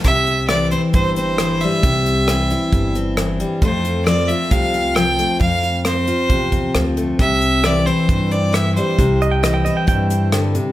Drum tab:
HH |xxxxxxxx|xxxxxxxx|xxxxxxxx|xxxxxxxx|
SD |--r---r-|--r---r-|--r---r-|--r---r-|
BD |o---o---|o---o---|o---o---|o---oo--|

HH |xxxxxxxx|xxxxxxxx|
SD |--r---r-|--r---r-|
BD |o---o---|o---o---|